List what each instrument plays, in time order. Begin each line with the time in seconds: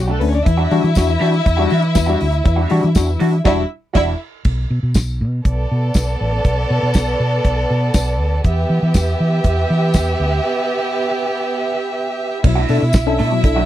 Already playing: fingered electric bass B1
0.05 violin section G3 G4, clean electric guitar D4 F#4
0.09 clean electric guitar A3, violin section A3 A4
0.20 fingered electric bass D2, tine electric piano A3 C#4 D4, violin section B3 B4, muted clean electric guitar stroke, open hi-hat
0.28 violin section C#4 C#5
0.33 tine electric piano C#4 D4, muted clean electric guitar stroke, closed hi-hat
0.37 violin section D4 D5
0.45 fingered electric bass E2, tine electric piano E3, violin section E4 E5, muted clean electric guitar stroke, kick, closed hi-hat
0.57 clean electric guitar G3 D4 F#4
0.70 fingered electric bass E3, clean electric guitar G3 D4 F#4, tine electric piano G3 D4 F#4, open hi-hat
0.83 fingered electric bass E3, tine electric piano D4 F#4, muted clean electric guitar stroke, closed hi-hat
0.95 fingered electric bass E2, tine electric piano D4 F#4, kick, snare, closed hi-hat, tambourine
1.07 tine electric piano E3, muted clean electric guitar stroke
1.19 fingered electric bass E3, clean electric guitar G3 D4 G4, tine electric piano D4 F#4, open hi-hat
1.32 muted clean electric guitar stroke, closed hi-hat
1.45 fingered electric bass E2, muted clean electric guitar stroke, kick, closed hi-hat
1.57 clean electric guitar G3 D4 F#4, tine electric piano G3 D4 F#4
1.69 fingered electric bass E3, clean electric guitar G3 D4 F#4, open hi-hat
1.82 tine electric piano E3, muted clean electric guitar stroke, closed hi-hat
1.94 fingered electric bass E2, tine electric piano E3, muted clean electric guitar stroke, kick, snare, closed hi-hat, tambourine
2.06 clean electric guitar G3 D4 F#4, tine electric piano G3 D4 F#4
2.19 fingered electric bass D2, tine electric piano D4 F#4, muted clean electric guitar stroke, open hi-hat
2.31 muted clean electric guitar stroke, closed hi-hat
2.44 fingered electric bass E2, tine electric piano E3, muted clean electric guitar stroke, kick, closed hi-hat
2.56 clean electric guitar G3 D4 F#4
2.68 fingered electric bass E3, clean electric guitar G3 D4 G4, tine electric piano G3 D4 F#4, open hi-hat
2.82 fingered electric bass E3, tine electric piano D4 F#4, muted clean electric guitar stroke, closed hi-hat
2.95 fingered electric bass E2, tine electric piano D4 F#4, kick, snare, closed hi-hat, tambourine
3.07 tine electric piano E3, muted clean electric guitar stroke
3.20 fingered electric bass E3, clean electric guitar G3 D4 F#4, tine electric piano D4 F#4, open hi-hat
3.32 muted clean electric guitar stroke, closed hi-hat
3.44 fingered electric bass E1, clean electric guitar G3 D4 F#4, tine electric piano G3 D4 F#4, violin section E4 E5, kick, snare, crash
3.94 fingered electric bass E1, clean electric guitar G3 D4 F#4, violin section E4 E5, kick, snare, crash
4.45 fingered electric bass B1, kick, crash
4.70 fingered electric bass B2
4.83 fingered electric bass B2
4.94 fingered electric bass B1, kick, snare, closed hi-hat, tambourine
5.21 fingered electric bass B2
5.45 fingered electric bass B1, violin section B3 A4 D5, kick, closed hi-hat
5.71 fingered electric bass B2
5.94 fingered electric bass B1, kick, snare, closed hi-hat, tambourine
6.21 fingered electric bass A1
6.45 fingered electric bass B1, kick, closed hi-hat
6.70 fingered electric bass B2
6.83 fingered electric bass B2
6.94 fingered electric bass B1, kick, snare, closed hi-hat, tambourine
7.20 fingered electric bass B2
7.45 fingered electric bass B1, kick, closed hi-hat
7.70 fingered electric bass B2
7.94 fingered electric bass B1, kick, snare, closed hi-hat, tambourine
8.20 fingered electric bass D2
8.44 fingered electric bass E2, violin section B3 G4 E5, kick, closed hi-hat
8.70 fingered electric bass E3
8.82 fingered electric bass E3
8.94 fingered electric bass E2, kick, snare, closed hi-hat, tambourine
9.20 fingered electric bass E3
9.44 fingered electric bass E2, kick, closed hi-hat
9.70 fingered electric bass E3
9.94 fingered electric bass E2, kick, snare, closed hi-hat, tambourine
10.20 fingered electric bass D2
12.44 fingered electric bass B1, tine electric piano B2 F#3, violin section E4 E5, muted clean electric guitar stroke, kick, crash
12.55 clean electric guitar A3 D4 F#4
12.68 fingered electric bass B2, clean electric guitar A3 D4 F#4, tine electric piano D4 A4, open hi-hat
12.82 fingered electric bass B2, muted clean electric guitar stroke
12.93 fingered electric bass B1, kick, snare, closed hi-hat, tambourine
13.07 tine electric piano C#4 D4 A4, muted clean electric guitar stroke
13.19 fingered electric bass B2, clean electric guitar A3 D4 A4, open hi-hat
13.32 tine electric piano B2 F#3, muted clean electric guitar stroke
13.44 fingered electric bass B1, tine electric piano D4 A4, muted clean electric guitar stroke, kick, closed hi-hat
13.56 tine electric piano B2 F#3, clean electric guitar A3 D4 F#4